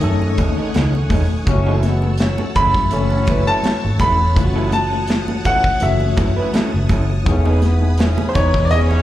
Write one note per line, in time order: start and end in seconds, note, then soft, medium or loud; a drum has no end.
0.00 0.30 F#2 medium
0.00 1.49 D#3 medium
0.00 0.02 A3 medium
0.00 1.33 A3 medium
0.00 0.03 C#4 medium
0.00 1.33 C#4 medium
0.00 1.49 G#4 loud
0.00 1.34 A4 loud
0.00 1.44 C#5 medium
0.00 0.36 D#5 medium
0.00 1.44 F#5 medium
0.00 1.44 G#5 medium
0.00 1.44 D#6 medium
0.00 muted clean electric guitar stroke soft
0.00 closed hi-hat medium
0.21 muted clean electric guitar stroke soft
0.21 muted conga soft
0.38 0.54 D#2 medium
0.38 0.51 A3 medium
0.38 0.52 C#4 medium
0.38 0.52 D#4 medium
0.38 0.52 G#4 medium
0.38 kick medium
0.38 closed hi-hat medium
0.38 high conga medium
0.57 0.69 A3 soft
0.57 0.69 C#4 medium
0.57 0.69 D#4 medium
0.57 0.69 A4 medium
0.74 1.03 C#2 medium
0.74 0.91 A3 medium
0.74 0.91 C#4 medium
0.74 0.92 D#4 medium
0.74 0.92 G#4 medium
0.74 snare loud
0.74 closed hi-hat medium
0.74 high conga medium
0.95 muted clean electric guitar stroke soft
0.95 muted conga soft
1.10 1.26 E1 medium
1.10 1.24 A3 medium
1.10 1.24 C#4 medium
1.10 1.24 D#4 medium
1.10 1.25 G#4 medium
1.10 kick medium
1.10 open hi-hat medium
1.10 high conga medium
1.31 muted clean electric guitar stroke soft
1.45 2.35 F#1 loud
1.45 1.76 A2 loud
1.45 2.77 E3 medium
1.45 1.76 F#3 medium
1.45 1.54 G#3 medium
1.45 2.78 C#4 medium
1.45 1.76 C#4 loud
1.45 2.78 F#4 medium
1.45 7.22 C#5 medium
1.45 7.22 F#5 medium
1.45 7.22 A5 medium
1.45 4.34 E6 medium
1.45 muted clean electric guitar stroke soft
1.45 kick loud
1.45 closed hi-hat medium
1.45 low conga medium
1.53 2.81 A3 medium
1.67 1.82 F#3 medium
1.67 1.83 C#4 medium
1.67 1.83 E4 medium
1.67 1.83 A4 medium
1.83 2.13 B2 medium
1.83 2.13 G#3 medium
1.83 2.13 B3 medium
1.83 muted clean electric guitar stroke soft
1.83 snare soft
1.83 closed hi-hat medium
1.83 high conga medium
2.02 muted clean electric guitar stroke soft
2.02 high conga soft
2.18 2.48 A2 medium
2.18 2.48 F#3 medium
2.18 2.49 C#4 medium
2.18 muted clean electric guitar stroke soft
2.18 snare loud
2.18 closed hi-hat medium
2.18 muted conga soft
2.38 muted clean electric guitar stroke soft
2.38 muted conga soft
2.38 high conga medium
2.55 2.71 F#1 medium
2.55 2.85 C#3 medium
2.55 2.72 F#3 medium
2.55 2.85 A3 medium
2.55 2.73 C#4 medium
2.55 2.85 E4 medium
2.55 2.73 E4 medium
2.55 2.73 A4 medium
2.55 3.51 B5 loud
2.55 kick medium
2.55 closed hi-hat medium
2.55 low conga medium
2.74 2.88 F#2 medium
2.74 muted clean electric guitar stroke soft
2.74 kick medium
2.74 snare soft
2.90 3.20 F#1 medium
2.90 3.97 A2 loud
2.90 4.22 E3 medium
2.90 3.97 F#3 medium
2.90 4.22 A3 medium
2.90 3.97 C#4 loud
2.90 4.23 C#4 medium
2.90 4.23 A4 medium
2.90 muted clean electric guitar stroke soft
2.90 closed hi-hat medium
3.10 muted clean electric guitar stroke soft
3.10 muted conga soft
3.27 3.43 F#1 medium
3.27 3.41 F#3 medium
3.27 3.41 C#4 medium
3.27 3.41 E4 medium
3.27 3.42 B4 medium
3.27 kick loud
3.27 closed hi-hat medium
3.27 high conga medium
3.47 3.59 F#3 medium
3.47 3.59 C#4 medium
3.47 3.59 E4 medium
3.47 3.59 A4 medium
3.47 3.97 A5 loud
3.63 snare loud
3.63 closed hi-hat medium
3.63 muted conga soft
3.63 high conga medium
3.83 3.97 G#1 medium
3.83 muted clean electric guitar stroke soft
3.99 4.37 E1 medium
3.99 4.17 F#3 medium
3.99 4.17 C#4 medium
3.99 4.17 E4 medium
3.99 4.17 A4 medium
3.99 4.69 B5 medium
3.99 kick loud
3.99 closed hi-hat medium
3.99 high conga medium
4.20 muted clean electric guitar stroke soft
4.34 5.61 F#1 medium
4.34 5.66 E3 medium
4.34 5.67 A3 medium
4.34 5.67 C#4 medium
4.34 4.44 F4 medium
4.34 9.02 D#6 medium
4.34 muted clean electric guitar stroke soft
4.34 kick loud
4.34 closed hi-hat medium
4.34 muted conga soft
4.34 low conga medium
4.44 5.71 F#4 medium
4.56 4.71 F#3 medium
4.56 4.71 C#4 medium
4.56 4.70 E4 medium
4.56 4.70 A4 medium
4.72 5.41 A5 loud
4.72 muted clean electric guitar stroke soft
4.72 closed hi-hat medium
4.72 high conga medium
4.92 muted clean electric guitar stroke soft
4.92 high conga soft
5.07 muted clean electric guitar stroke soft
5.07 snare loud
5.07 closed hi-hat medium
5.28 muted clean electric guitar stroke soft
5.28 high conga medium
5.45 5.62 F#3 medium
5.45 5.62 C#4 medium
5.45 5.62 E4 medium
5.45 5.62 A4 medium
5.45 5.83 F#5 medium
5.45 kick loud
5.45 closed hi-hat medium
5.45 low conga medium
5.64 muted clean electric guitar stroke soft
5.64 kick medium
5.80 6.10 F#1 medium
5.80 7.11 E3 medium
5.80 7.12 A3 medium
5.80 7.12 C#4 medium
5.80 7.13 F#4 medium
5.80 6.87 E5 medium
5.80 muted clean electric guitar stroke soft
5.80 closed hi-hat medium
5.80 muted conga soft
6.00 muted clean electric guitar stroke soft
6.00 muted conga soft
6.17 6.33 F#2 medium
6.17 6.30 F#3 medium
6.17 6.30 C#4 medium
6.17 6.31 E4 medium
6.17 6.31 A4 medium
6.17 kick loud
6.17 closed hi-hat medium
6.17 high conga medium
6.36 6.49 F#3 medium
6.36 6.48 C#4 medium
6.36 6.48 E4 medium
6.36 6.48 B4 medium
6.53 6.70 F#3 medium
6.53 6.70 C#4 medium
6.53 6.71 E4 medium
6.53 6.71 A4 medium
6.53 snare loud
6.53 closed hi-hat medium
6.53 muted conga soft
6.53 high conga medium
6.74 6.86 F#1 medium
6.74 muted clean electric guitar stroke soft
6.89 7.18 F#1 medium
6.89 7.03 F#3 medium
6.89 7.03 C#4 medium
6.89 7.03 E4 medium
6.89 7.04 A4 medium
6.89 kick medium
6.89 closed hi-hat medium
6.89 high conga medium
7.10 muted clean electric guitar stroke medium
7.24 8.14 E1 loud
7.24 7.55 C#3 loud
7.24 8.56 E3 medium
7.24 7.55 A3 medium
7.24 8.57 B3 medium
7.24 7.55 C#4 loud
7.24 8.57 D#4 medium
7.24 8.58 G#4 medium
7.24 9.02 B4 medium
7.24 9.02 G#5 medium
7.24 muted clean electric guitar stroke soft
7.24 kick loud
7.24 closed hi-hat medium
7.24 muted conga soft
7.24 low conga medium
7.45 7.61 E3 medium
7.45 7.60 B3 medium
7.45 7.60 D#4 medium
7.45 7.60 G#4 medium
7.45 muted conga soft
7.62 7.91 G#2 medium
7.62 7.92 E3 medium
7.62 7.92 B3 medium
7.62 muted clean electric guitar stroke soft
7.62 snare soft
7.62 closed hi-hat medium
7.62 high conga medium
7.82 muted clean electric guitar stroke soft
7.82 high conga soft
7.98 8.28 C#3 medium
7.98 8.28 A3 medium
7.98 8.28 C#4 medium
7.98 muted clean electric guitar stroke soft
7.98 snare loud
7.98 closed hi-hat medium
7.98 muted conga soft
8.18 muted clean electric guitar stroke soft
8.18 muted conga soft
8.18 high conga medium
8.29 8.35 C5 medium
8.35 8.50 E1 medium
8.35 8.64 B2 medium
8.35 8.51 E3 medium
8.35 8.64 G#3 medium
8.35 8.51 B3 medium
8.35 8.64 D#4 medium
8.35 8.52 D#4 medium
8.35 8.52 G#4 medium
8.35 8.66 C#5 medium
8.35 kick medium
8.35 closed hi-hat medium
8.35 low conga medium
8.54 8.73 E2 medium
8.54 muted clean electric guitar stroke soft
8.54 kick loud
8.54 snare soft
8.65 8.71 D5 medium
8.70 8.99 E1 loud
8.70 9.02 G#2 loud
8.70 9.02 D#3 medium
8.70 9.02 E3 medium
8.70 9.02 E3 loud
8.70 9.02 B3 medium
8.70 9.02 C#4 loud
8.70 9.02 G#4 medium
8.70 8.79 D#5 loud
8.70 muted clean electric guitar stroke soft
8.70 closed hi-hat medium
8.90 muted clean electric guitar stroke soft
8.90 muted conga soft